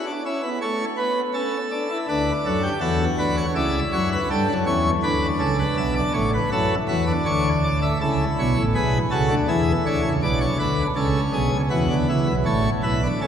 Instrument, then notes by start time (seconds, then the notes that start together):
pipe organ
Already playing: F#4
0.07 D4
0.26 C#4 E4
0.43 B3
0.62 A3 C#5
0.97 B3 B4
1.34 C#4 A4
1.72 D4
1.90 E4
2.08 D2 D3 D4 B4
2.45 F#2 F#3 A4
2.63 G4
2.81 E2 E3 F#4 A4
3.18 D2 D3 B4
3.37 C#5
3.55 C#2 C#3 E4 D5
3.93 F#2 F#3 C#5
4.12 B4
4.30 G2 G3 D4 A4
4.48 F#2 F#3
4.66 E2 E3 C#4 C#5
5.03 D2 D3 D4 B4
5.39 C#2 C#3 A4
5.59 B4
5.77 B1 B2 E5
5.96 D5
6.13 A1 A2 C#5
6.34 B4
6.52 F#2 F#3 E4 A4
6.88 E2 E3 F#4 B4
7.07 D4
7.26 D2 D3 C#5
7.64 D5
7.82 E5
8.01 C#2 C#3 E4 A4
8.39 B1 B2 C#5
8.58 A1 A2
8.75 B1 B2 G#4 B4
9.11 C#2 C#3 F#4 A4
9.30 D2 D3
9.48 E2 E3 E4 G#4
9.86 D2 D3 C#5
10.05 C#2 C#3
10.23 B1 B2 D4 D5
10.41 C#5
10.59 D2 D3 B4
10.96 C#2 C#3 C#4 A4
11.33 B1 B2 G#4
11.51 C#2 C#3
11.70 E2 E3 B3 F#4
11.90 D2 D3
12.09 C#2 C#3 E4
12.28 B1 B2
12.45 A1 A2 A3 C#5
12.83 B1 B2 E4 B4
13.03 D4
13.21 C#2 C#3 C#4 A4